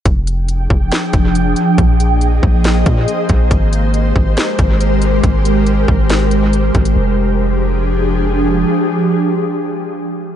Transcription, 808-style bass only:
\new Staff \with { instrumentName = "808-style bass" } { \clef bass \time 4/4 \key f \dorian \tempo 4 = 139 f,,4. f,,8 r8 f,,4 r8 | bes,,4. bes,,4 bes,8 r8 bes,,8 | aes,,4. aes,,8 r8 aes,,4. | aes,,4. aes,,2 aes,,8 |
f,,1 | r1 | }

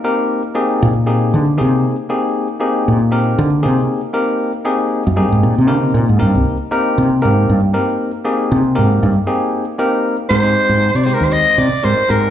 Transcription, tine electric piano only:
\new Staff \with { instrumentName = "Tine electric piano" } { \time 4/4 \key aes \lydian \tempo 4 = 117 <bes c' ees' g' bes'>8. r16 <bes c' ees' g' aes'>8. r16 <bes c' ees' g' aes'>8. r16 <bes c' ees' g' aes'>8. r16 | <bes c' ees' g' aes'>8. r16 <bes c' ees' g' aes'>8. r16 <bes c' ees' g' bes'>8. r16 <bes c' ees' g' aes'>8. r16 | <bes c' ees' g' bes'>8. r16 <bes c' ees' g' aes'>8. r16 <bes c' ees' g' aes'>8. r16 <bes c' ees' g' bes'>8. r16 | <bes c' ees' g' bes'>8. r16 <bes c' ees' g' bes'>8. r16 <bes c' ees' g' bes'>8. r16 <bes c' ees' g' bes'>8. r16 |
<bes c' ees' g' aes'>8. r16 <bes c' ees' g' bes'>8. r16 <bes c' ees' g' aes'>8. r16 <bes c' ees' g' bes'>8. r16 | <aes c' ees' g' bes'>16 <aes c' ees' g' c''>4 r16 <aes c' ees' g' c''>4 r8 <aes c' ees' g' bes'>16 r16 <aes c' ees' g' bes'>16 r16 | }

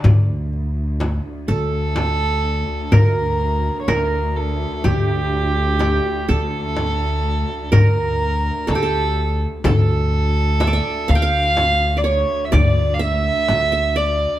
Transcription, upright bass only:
\new Staff \with { instrumentName = "Upright bass" } { \clef bass \time 10/8 \tempo 4 = 62 d,4. d,4. d,4 d,4 | d,4. d,4. d,4 d,4 | d,4. d,4. d,4 d,4 | }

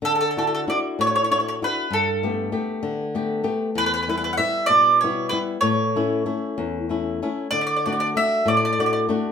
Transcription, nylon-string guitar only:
\new Staff \with { instrumentName = "Nylon-string guitar" } { \time 6/8 \key d \major \tempo 4. = 64 d8 <d' e' fis'>8 <d' e' fis'>8 a,8 <d' e' fis'>8 <d' e' fis'>8 | g,8 <a b g'>8 <a b g'>8 d8 <a b g'>8 <a b g'>8 | e,8 <g b e'>8 <g b e'>8 b,8 <g b e'>8 <g b e'>8 | a,8 <a cis' e'>8 <a cis' e'>8 e,8 <a cis' e'>8 <a cis' e'>8 |
d8 <a d' fis'>8 <a d' fis'>8 a,8 <a d' fis'>8 <a d' fis'>8 | }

